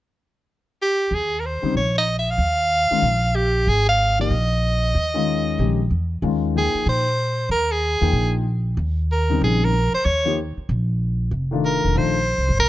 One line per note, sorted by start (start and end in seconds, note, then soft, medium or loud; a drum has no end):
0.82 1.16 G4 medium
1.11 1.60 D#2 medium
1.11 1.41 G#4 medium
1.40 1.47 A#4 soft
1.45 1.76 C5 medium
1.62 1.73 C#3 soft
1.62 1.74 G3 soft
1.62 1.74 C4 soft
1.62 1.74 D#4 medium
1.62 muted upright bass stroke soft
1.75 2.36 A#1 medium
1.75 1.95 C#5 medium
1.98 2.18 D#5 medium
2.19 2.32 E5 medium
2.30 3.37 F5 medium
2.38 2.87 D#2 medium
2.91 3.02 D#3 medium
2.91 3.02 G#3 soft
2.91 3.02 C#4 soft
2.91 3.02 F4 medium
2.91 muted upright bass stroke soft
3.02 3.63 A#1 medium
3.36 3.70 G4 medium
3.67 4.28 G#1 medium
3.67 3.88 G#4 medium
3.89 4.18 F5 medium
4.19 4.30 F3 soft
4.19 4.30 A#3 soft
4.19 4.30 D#4 soft
4.19 4.30 G4 medium
4.19 5.87 D#5 medium
4.31 4.91 A#1 medium
4.95 5.55 D#2 medium
5.14 5.56 D#3 medium
5.14 5.56 G#3 soft
5.14 5.56 C#4 medium
5.14 5.56 F4 medium
5.58 5.88 A#1 medium
5.58 5.77 D#3 soft
5.58 5.77 G#3 soft
5.58 5.77 C#4 soft
5.58 5.77 G4 soft
5.91 6.20 E2 medium
6.22 6.71 D#2 medium
6.22 6.53 D#3 soft
6.22 6.53 G#3 soft
6.22 6.53 C#4 soft
6.22 6.54 F4 medium
6.55 7.03 F3 soft
6.55 7.03 A#3 soft
6.55 7.03 D#4 soft
6.55 6.86 G#4 medium
6.55 7.03 G5 soft
6.74 muted upright bass stroke soft
6.86 7.47 A#2 medium
6.86 7.47 C5 medium
7.49 7.98 D#2 medium
7.49 7.73 A#4 medium
7.71 8.35 G#4 medium
8.01 8.12 E2 medium
8.01 8.43 F3 soft
8.01 8.43 A#3 soft
8.01 8.43 D#4 soft
8.01 8.43 G5 medium
8.13 8.74 A#1 medium
8.77 9.38 D#2 medium
9.12 9.40 A#4 medium
9.29 9.71 C#3 soft
9.29 9.71 G3 soft
9.29 9.71 C4 soft
9.29 9.71 D#4 medium
9.41 9.90 A#1 medium
9.41 9.66 G#4 medium
9.64 9.93 A#4 medium
9.93 10.06 C5 medium
9.93 muted upright bass stroke soft
10.05 10.53 D#2 medium
10.05 10.37 C#5 medium
10.25 10.36 F3 medium
10.25 10.36 A#3 soft
10.25 10.36 D#4 soft
10.25 10.36 G4 medium
10.57 muted upright bass stroke soft
10.69 11.29 A#1 medium
11.31 11.80 F1 medium
11.51 11.93 D#3 medium
11.51 11.93 A3 medium
11.51 11.94 D4 soft
11.51 11.94 F4 medium
11.65 11.99 A#4 medium
11.84 11.95 E1 medium
11.95 12.35 A#1 medium
11.95 12.14 D#3 soft
11.95 12.14 A3 soft
11.95 12.14 D4 soft
11.95 12.14 F4 medium
11.95 12.59 C5 medium
12.38 12.48 C2 soft
12.49 12.59 G1 medium
12.59 12.69 C2 medium
12.59 12.69 A#4 medium